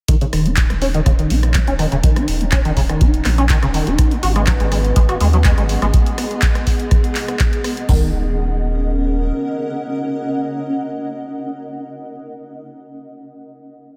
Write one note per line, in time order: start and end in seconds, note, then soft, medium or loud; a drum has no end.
0.08 0.15 D#3 loud
0.08 5.55 C#4 medium
0.08 kick loud
0.08 closed hi-hat medium
0.21 0.25 C#3 loud
0.21 closed hi-hat soft
0.30 0.66 D#1 medium
0.30 0.47 D#3 medium
0.30 5.56 A#5 medium
0.30 cross-stick medium
0.30 open hi-hat medium
0.46 0.72 D#4 medium
0.46 closed hi-hat soft
0.57 kick loud
0.57 clap loud
0.57 closed hi-hat medium
0.70 1.02 D#1 loud
0.70 0.74 D#3 loud
0.70 cross-stick medium
0.70 closed hi-hat soft
0.82 0.89 C#4 medium
0.82 open hi-hat medium
0.94 1.01 D#3 loud
0.94 closed hi-hat soft
1.04 1.26 D#1 medium
1.04 1.10 C#3 loud
1.04 7.89 D#5 medium
1.04 kick loud
1.04 cross-stick medium
1.04 closed hi-hat medium
1.12 7.89 F#5 medium
1.19 1.32 D#3 medium
1.19 closed hi-hat soft
1.30 1.63 A#1 loud
1.30 1.56 D#4 medium
1.30 open hi-hat loud
1.43 cross-stick medium
1.43 closed hi-hat soft
1.54 1.59 D#3 loud
1.54 kick loud
1.54 clap loud
1.54 closed hi-hat medium
1.67 1.87 D#1 medium
1.67 1.74 C#4 medium
1.67 closed hi-hat soft
1.79 1.86 D#3 loud
1.79 cross-stick medium
1.79 open hi-hat medium
1.92 2.01 D#1 medium
1.92 1.96 C#3 loud
1.92 closed hi-hat soft
2.03 2.18 D#3 medium
2.03 kick loud
2.03 closed hi-hat medium
2.16 2.42 D#4 medium
2.16 cross-stick medium
2.16 closed hi-hat soft
2.28 2.61 D#1 medium
2.28 open hi-hat loud
2.41 2.45 D#3 loud
2.41 closed hi-hat soft
2.52 2.59 C#4 loud
2.52 kick loud
2.52 cross-stick medium
2.52 clap loud
2.52 closed hi-hat medium
2.65 2.97 D#1 loud
2.65 2.71 D#3 loud
2.65 closed hi-hat soft
2.77 2.81 C#3 loud
2.77 kick medium
2.77 open hi-hat medium
2.89 3.03 D#3 medium
2.89 cross-stick medium
2.89 closed hi-hat soft
3.01 3.21 D#1 medium
3.01 3.27 D#4 medium
3.01 kick loud
3.01 closed hi-hat medium
3.14 closed hi-hat soft
3.25 3.58 A#1 loud
3.25 3.30 D#3 loud
3.25 cross-stick medium
3.25 clap medium
3.25 open hi-hat loud
3.38 3.45 C#4 loud
3.38 closed hi-hat soft
3.49 3.57 D#3 loud
3.49 kick loud
3.49 clap loud
3.49 closed hi-hat medium
3.63 3.82 D#1 loud
3.63 3.66 C#3 loud
3.63 cross-stick medium
3.63 closed hi-hat soft
3.74 3.89 D#3 medium
3.74 open hi-hat medium
3.87 3.96 D#1 medium
3.87 4.13 D#4 medium
3.87 closed hi-hat soft
3.98 7.89 B3 medium
3.98 5.95 B4 medium
3.98 kick loud
3.98 cross-stick medium
3.98 closed hi-hat medium
4.11 4.15 G#3 loud
4.11 closed hi-hat soft
4.23 4.56 G#1 medium
4.23 4.30 F#4 loud
4.23 open hi-hat loud
4.33 4.42 G#3 loud
4.33 7.89 G#4 medium
4.33 cross-stick medium
4.33 closed hi-hat soft
4.47 4.52 F#3 loud
4.47 kick loud
4.47 clap loud
4.47 closed hi-hat medium
4.60 4.92 G#1 loud
4.60 4.67 G#3 medium
4.60 closed hi-hat soft
4.72 4.79 G#3 medium
4.72 cross-stick medium
4.72 open hi-hat loud
4.85 closed hi-hat soft
4.96 5.16 G#1 medium
4.96 5.00 G#3 loud
4.96 kick loud
4.96 closed hi-hat medium
5.09 5.15 F#4 loud
5.09 cross-stick medium
5.09 closed hi-hat soft
5.20 5.53 D#2 loud
5.20 5.28 G#3 loud
5.20 open hi-hat loud
5.33 5.37 F#3 medium
5.33 closed hi-hat soft
5.44 5.52 G#3 medium
5.44 kick loud
5.44 cross-stick medium
5.44 clap loud
5.44 closed hi-hat medium
5.58 5.77 G#1 medium
5.58 5.64 G#3 medium
5.58 closed hi-hat soft
5.69 open hi-hat loud
5.82 5.91 G#1 medium
5.82 5.86 G#3 loud
5.82 cross-stick medium
5.82 closed hi-hat soft
5.94 kick loud
5.94 closed hi-hat medium
6.06 closed hi-hat soft
6.18 cross-stick medium
6.18 open hi-hat loud
6.31 closed hi-hat soft
6.42 kick loud
6.42 clap loud
6.42 closed hi-hat medium
6.55 cross-stick medium
6.55 closed hi-hat soft
6.67 kick medium
6.67 open hi-hat loud
6.80 closed hi-hat soft
6.91 kick loud
6.91 cross-stick medium
6.91 closed hi-hat medium
7.04 closed hi-hat soft
7.15 clap medium
7.15 open hi-hat loud
7.28 cross-stick medium
7.28 closed hi-hat soft
7.39 kick loud
7.39 clap loud
7.39 closed hi-hat medium
7.53 closed hi-hat soft
7.64 cross-stick medium
7.64 open hi-hat loud
7.77 closed hi-hat soft
7.89 9.31 D#1 loud
7.89 8.12 D#3 medium
7.89 12.03 C#4 medium
7.89 kick loud
7.89 floor tom loud
7.89 open hi-hat medium
7.97 12.11 A#4 medium
8.04 12.19 D#5 medium
8.11 12.25 F#5 medium